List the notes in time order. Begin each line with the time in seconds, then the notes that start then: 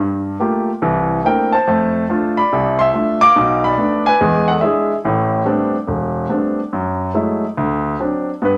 0.00 G2
0.40 A3 A#3 F4 G4
0.82 C2 E3
1.24 A3 A#3 C4 D4 E4 A#4 G5
1.52 C5 A5
1.67 F2 A3
2.09 A3 D4 F4
2.37 D5 B5
2.52 C2 C3
2.79 E5 C6
2.93 A3 D4 F4
3.21 F5 D6
3.36 B1 B2
3.64 D5 B5
3.78 A3 B3 D4
4.06 B4 G#5
4.21 E2 G#3
4.48 A4 F#5
4.57 D5 E5
4.62 G#3 D4 E4 G#4
5.05 A1 A2
5.45 G3 A3 B3 C4 D4
5.88 E1
6.29 G3 A3 B3 C4 D4
6.73 F#2
7.14 F#3 G#3 A3 E4
7.57 D2
8.00 F#3 C4 D4
8.42 G2 B3 B4